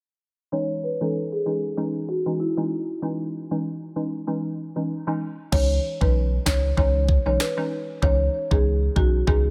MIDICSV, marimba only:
0, 0, Header, 1, 2, 480
1, 0, Start_track
1, 0, Key_signature, 4, "minor"
1, 0, Tempo, 625000
1, 402, Time_signature, 4, 2, 24, 8
1, 7299, End_track
2, 0, Start_track
2, 0, Title_t, "Marimba"
2, 0, Program_c, 0, 12
2, 402, Note_on_c, 0, 73, 87
2, 521, Note_off_c, 0, 73, 0
2, 642, Note_on_c, 0, 71, 72
2, 762, Note_off_c, 0, 71, 0
2, 777, Note_on_c, 0, 69, 66
2, 871, Note_off_c, 0, 69, 0
2, 1017, Note_on_c, 0, 68, 74
2, 1111, Note_off_c, 0, 68, 0
2, 1124, Note_on_c, 0, 68, 68
2, 1243, Note_off_c, 0, 68, 0
2, 1603, Note_on_c, 0, 66, 79
2, 1722, Note_off_c, 0, 66, 0
2, 1843, Note_on_c, 0, 64, 74
2, 2195, Note_off_c, 0, 64, 0
2, 4243, Note_on_c, 0, 73, 96
2, 4362, Note_off_c, 0, 73, 0
2, 4619, Note_on_c, 0, 71, 70
2, 4712, Note_off_c, 0, 71, 0
2, 4964, Note_on_c, 0, 73, 73
2, 5083, Note_off_c, 0, 73, 0
2, 5204, Note_on_c, 0, 73, 80
2, 5323, Note_off_c, 0, 73, 0
2, 5578, Note_on_c, 0, 73, 76
2, 5671, Note_off_c, 0, 73, 0
2, 5683, Note_on_c, 0, 71, 82
2, 6035, Note_off_c, 0, 71, 0
2, 6163, Note_on_c, 0, 73, 97
2, 6282, Note_off_c, 0, 73, 0
2, 6538, Note_on_c, 0, 68, 78
2, 6631, Note_off_c, 0, 68, 0
2, 6883, Note_on_c, 0, 66, 80
2, 7002, Note_off_c, 0, 66, 0
2, 7122, Note_on_c, 0, 68, 80
2, 7242, Note_off_c, 0, 68, 0
2, 7299, End_track
0, 0, End_of_file